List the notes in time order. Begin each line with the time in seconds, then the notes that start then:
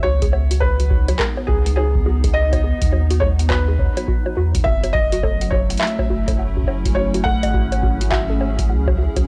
Already playing: B3 F#4
0.03 C#2 F#4 C#5
0.22 G#4, kick, closed hi-hat
0.33 F#5, high bongo
0.48 D#4 F#4, closed hi-hat
0.60 G#4 B4, kick, high bongo
0.80 F#4, closed hi-hat
0.91 F#4, kick
1.08 F#4, closed hi-hat, high bongo
1.18 G#4 A#4, kick, clap
1.37 F#5, high bongo
1.47 C#2 F#4 G#4, kick
1.66 G#4, closed hi-hat
1.76 F#4 G#4, high bongo
1.95 F#4, kick
2.06 F#4, high bongo
2.24 G#4, kick, closed hi-hat
2.34 D#5 F#5
2.53 F#4, kick, closed hi-hat, high bongo
2.64 G#4
2.82 D#2 F#4, kick, closed hi-hat
2.93 F#4, high bongo
3.10 F#4, closed hi-hat
3.20 G#4 C#5, kick, high bongo
3.39 F#5, closed hi-hat
3.49 F#4 B4, kick, clap, high bongo
3.68 G#4
3.79 C#5, kick
3.97 F#4, closed hi-hat, high bongo
4.08 F#4, kick
4.26 F#4, high bongo
4.37 E2 F#4
4.55 F#4, kick, closed hi-hat
4.64 F#1 F#3 E5 F#5, kick
4.84 F#4, closed hi-hat, high bongo
4.91 A3 F#4 D#5, kick
5.12 F#4, closed hi-hat
5.20 C#4 A4, kick, high bongo
5.29 E4
5.41 F#5, closed hi-hat
5.50 F#4 C#5, kick, high bongo
5.70 F#5, closed hi-hat
5.77 F#4 E5, clap, closed hi-hat
5.87 closed hi-hat
5.99 F#4, kick, high bongo
6.10 F#1 F#4
6.28 A4, kick, closed hi-hat, high bongo
6.39 F#5
6.57 F#4, kick
6.62 G#4, kick
6.68 F#5, high bongo
6.85 F#4, kick, closed hi-hat
6.95 F#4 C#5, high bongo
7.14 F#4, closed hi-hat
7.24 A4 F#5, kick
7.43 G#1 F#5, closed hi-hat, high bongo
7.54 F#4, kick
7.72 F#5, closed hi-hat, high bongo
7.83 F#4, kick
8.01 F#4, closed hi-hat
8.10 F#4 E5, kick, clap, high bongo
8.30 A4
8.41 F#5, high bongo
8.58 F#4, kick, closed hi-hat
8.69 C#2 F#5
8.87 F#4, kick, high bongo
8.98 E4 F#4
9.16 C#2 F#4, kick, closed hi-hat, high bongo